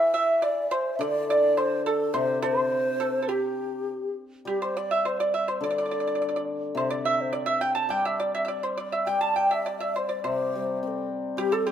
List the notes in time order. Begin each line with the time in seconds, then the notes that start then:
Already playing: E3 E5
0.14 E5
0.42 D5
0.71 C5
0.96 D3 E5
1.01 D5
1.27 D5 E5
1.31 D5
1.57 C5
1.85 A4
2.14 C3 C5
2.42 C5 D5
3.00 A4
3.22 A4
3.28 G4
4.45 G3 G4
4.62 C5
4.77 D5
4.91 E5
5.05 C5
5.20 D5
5.34 E5
5.48 C5
5.61 D3 D5
5.70 D5
5.78 D5
5.86 D5
5.91 D5
6.00 D5
6.07 D5
6.15 D5
6.22 D5
6.29 D5
6.36 D5
6.75 C3 C5
6.90 D5
7.05 E5
7.21 C5
7.33 D5
7.46 E5
7.61 G5
7.75 A5
7.89 G3 G5
8.05 E5
8.17 D5 E5
8.35 E5
8.45 D5 E5
8.63 C5
8.77 D5
8.92 E5
9.06 G3 G5
9.21 A5
9.35 G5
9.50 E5
9.64 D5 E5
9.68 D5
9.79 E5
9.94 C5 D5
10.09 D5
10.24 C3 C5
10.55 G3
10.83 C4 C5
10.88 A4
11.37 G3 G4
11.52 A4
11.67 G4